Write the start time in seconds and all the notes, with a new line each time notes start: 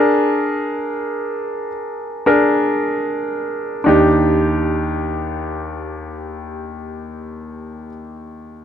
Already playing: D4 G#4 A#4
2.26 D4 G#4 A#4
3.84 D#2 D4 D#4 G4